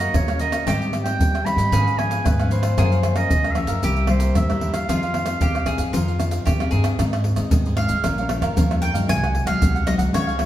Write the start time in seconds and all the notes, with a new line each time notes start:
Already playing: F#3 A#3 C#4 F#4 D#5
0.00 A#4 C#5 F5
0.14 D#2 C#3 C#5, pandeiro, tamborim, maracas, surdo
0.28 A#3 C#4 A#4 C#5 F5, pandeiro, tamborim, maracas
0.39 F#4 A#4 C#5 D#5 F5, pandeiro, maracas
0.52 A#4 C#5 F5, pandeiro, tamborim, maracas
0.66 G#2 G3 C4 D#4 G4 G#4 C5 D#5 G5, pandeiro, tamborim, maracas, surdo
0.81 C5 D#5 G5, pandeiro, maracas
0.93 pandeiro, tamborim, maracas
1.04 G3 C4 D#4 C5 D#5 G5, pandeiro, tamborim, maracas
1.19 D#2 D#3, muted cavaquinho stroke, pandeiro, maracas, surdo
1.33 C5 D#5 G5, pandeiro, tamborim, maracas
1.45 G3 C4 D#4 G#4 C5 D#5 G5 B5, pandeiro, tamborim, maracas
1.56 G#2 C5 D#5 G5, pandeiro, maracas
1.72 G#2 F3 B3 C#4 F4 G#4 B4 C#5 F5, pandeiro, maracas, surdo
1.86 B4 C#5 F5, pandeiro, maracas
1.98 F3 B3 C#4 G#5, muted cavaquinho stroke, pandeiro, tamborim
2.10 B4 C#5 F5, pandeiro, maracas
2.25 G#2 B4, pandeiro, tamborim, maracas, surdo
2.40 F3 B3 C#4 B4 C#5 F5, pandeiro, tamborim, maracas
2.51 F4 B4 C5 C#5 F5, pandeiro, maracas
2.63 B4 C#5 F5, pandeiro, tamborim, maracas
2.77 F#2 F3 A#3 C#4 F#4 G#4 A#4 C#5 F5, pandeiro, tamborim, maracas, surdo
2.92 A#4 C#5 F5, pandeiro, maracas
3.03 pandeiro, tamborim, maracas
3.15 F3 A#3 C#4 A#4 C#5 D#5 F5, pandeiro, tamborim, maracas
3.30 C#2 C#3, muted cavaquinho stroke, pandeiro, maracas, surdo
3.44 A#4 C#5 F5, pandeiro, tamborim, maracas
3.51 F5
3.55 F3 A#3 C#4 F#4 A#4 C#5 E5 F5, pandeiro, tamborim, maracas
3.67 F#2 A#4 C#5 F5, pandeiro, maracas
3.83 C2 C3 G3 A#3 E4 G4 A#4 C5 E5, pandeiro, maracas, surdo
3.96 A#4 C5 E5, pandeiro, maracas
4.07 G3 A#3 E4 C5, muted cavaquinho stroke, pandeiro, tamborim
4.20 A#4 C5 E5, pandeiro, maracas
4.35 E2 G2 E5, pandeiro, tamborim, maracas, surdo
4.49 G3 A#3 E4 A#4 C5 E5, pandeiro, tamborim, maracas
4.61 E4 A#4 C5 E5, pandeiro
4.74 A#4 C5 E5 F5, pandeiro, tamborim, maracas
4.89 F2 F3 C4 D#4 F4 G#4 C5 F5, pandeiro, tamborim, maracas, surdo
5.03 G#4 C5 F5, pandeiro, maracas
5.14 C4 D#4 G#4, pandeiro, tamborim
5.26 C4 D#4 G#4 C5 F5, pandeiro, tamborim, maracas
5.41 C2 C3 G4, pandeiro, maracas, surdo
5.55 G#4 C5 F5, pandeiro, tamborim, maracas
5.66 C4 D#4 G#4 C5 F5, pandeiro, tamborim, maracas, surdo
5.78 F2 G#4 C5 F5, pandeiro, maracas
5.93 F2 F3 D#4 F4 G#4 C5 F5, pandeiro, maracas, surdo
6.08 G#4 C5 F5, pandeiro, maracas
6.19 C4 D#4 G#4, muted cavaquinho stroke, pandeiro, tamborim, maracas
6.31 G#4 C5 F5, pandeiro, maracas
6.46 F2 C3 G4, pandeiro, tamborim, maracas, surdo
6.60 C4 D#4 G#4 C5 F5, pandeiro, tamborim, maracas
6.71 G2 D#4 G#4 C5 F5, pandeiro
6.84 G#4 C5 F5, pandeiro, tamborim, maracas
6.99 G#2 G#3 C4 D#4 G#4 C5 D#5, pandeiro, tamborim, maracas, surdo
7.13 G#4 C5 D#5, pandeiro, tamborim, maracas
7.24 muted cavaquinho stroke, pandeiro, surdo
7.36 G#2 G#3 C4 D#4 G#4 C5 D#5, pandeiro, tamborim, maracas, surdo
7.51 G#2 D#3 D#4 G#4 C5 D#5, pandeiro, maracas, surdo
7.66 G#4 C5 D#5, pandeiro, maracas
7.77 G#3 C4 D#4 F5, pandeiro, tamborim, surdo
7.89 G#2 G#4 C5 D#5, pandeiro, maracas
8.04 A#1 A#2 F3 A#3 C#4 F4 A#4 C#5 F5, pandeiro, tamborim, maracas, surdo
8.18 F3 A#3 C#4 A#4 C#5 F5, pandeiro, maracas, surdo
8.29 F3 A#3 C#4, muted cavaquinho stroke, pandeiro, tamborim
8.41 F2 A#4 C#5 F5, pandeiro, tamborim, maracas
8.56 F2 F4 A#4 C#5 F5, pandeiro, maracas, surdo
8.70 F3 A#3 C#4, pandeiro, tamborim, maracas
8.82 F4 A#4 C#5 F5 G5, pandeiro
8.94 G2 F#3 G#3 D#4 A#4 C#5 F5, pandeiro, maracas, surdo
9.08 C2 C3 F#4 G#4 C5 F#5 G#5, pandeiro, tamborim, maracas, surdo
9.23 G#4 C5 F#5, pandeiro, tamborim, maracas
9.34 muted cavaquinho stroke, pandeiro, surdo
9.46 C2 F#3 G#3 D#4 G#4 C5 F5 F#5, pandeiro, tamborim, maracas, surdo
9.61 C2 C3 F#4 G#4 C5 F#5, pandeiro, maracas, surdo
9.75 G#4 C5 F#5, pandeiro, maracas
9.87 F#3 G#3 D#4 D#5, pandeiro, tamborim, maracas, surdo
9.98 C2 G#4 C5 F#5, pandeiro, maracas
10.13 C#2 C#3 F3 G#3 C#4 F4 G#4 C#5 F5, pandeiro, tamborim, maracas, surdo
10.27 G#4 C#5 F5, pandeiro, maracas, surdo
10.39 F3 G#3 C#4, muted cavaquinho stroke, pandeiro, tamborim